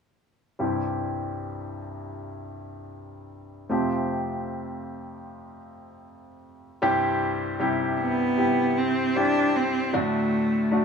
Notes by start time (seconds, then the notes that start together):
0.59 C2 G2 G3 C4 E4 G4
3.69 F2 C3 A3 C4 F4 G4
6.82 C2 G2 G3 C4 E4 G4
7.60 C3 G3 E4 G4
7.99 B3
8.38 C3 G3 E4 G4
8.78 C4
9.16 G3 C4 D4 E4 G4
9.56 C4
9.93 D2 A2 F#3 A3 D4 F#4
10.71 F#3 A3 D4 F#4